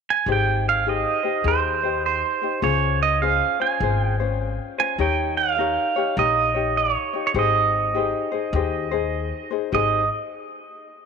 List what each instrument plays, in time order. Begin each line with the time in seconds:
0.10 pedal steel guitar G#5
0.26 upright bass G#1, ukulele D#4 G4 G#4 C5
0.32 pedal steel guitar G5
0.69 pedal steel guitar F5
0.86 ukulele D#4 G4 G#4 C5, pedal steel guitar D#5
1.23 ukulele D#4 G4 C5
1.44 upright bass D#2, ukulele D#4 G4 G#4 C5, pedal steel guitar C5
1.83 ukulele D#4 G4 C5
2.06 pedal steel guitar C5
2.42 ukulele D#4 G4 C5
2.62 upright bass C#2, ukulele C#4 F4 G#4 C5, pedal steel guitar C#5
3.03 pedal steel guitar D#5
3.22 ukulele C#4 F4 G#4 C5, pedal steel guitar F5
3.60 ukulele C#4 F4 C5, pedal steel guitar G#5
3.80 upright bass G#1, ukulele C#4 F4 G#4 C5
4.01 pedal steel guitar G5
4.20 ukulele C#4 F4 C5
4.78 ukulele C#4 F4 C5, pedal steel guitar G#5
4.98 upright bass D#2, ukulele D#4 G4 A#4 C#5, pedal steel guitar G5
5.37 pedal steel guitar F5
5.58 ukulele D#4 G4 A#4 C#5
5.96 ukulele D#4 G4 C#5
6.17 upright bass A#1, ukulele D#4 G4 A#4 C#5, pedal steel guitar D#5
6.54 ukulele D#4 G4 C#5
6.77 pedal steel guitar D5
6.94 pedal steel guitar C#5
7.13 ukulele D#4 G4 C#5
7.27 pedal steel guitar C#5
7.34 upright bass G#1, ukulele D#4 G4 G#4 C5
7.39 pedal steel guitar D#5
7.94 ukulele D#4 G4 G#4 C5
8.32 ukulele D#4 G#4 C5
8.53 upright bass D#2, ukulele D#4 G4 G#4 C5
8.91 ukulele D#4 G#4 C5
9.51 ukulele D#4 G#4 C5
9.72 upright bass G#1, ukulele D#4 G4 G#4 C5, pedal steel guitar D#5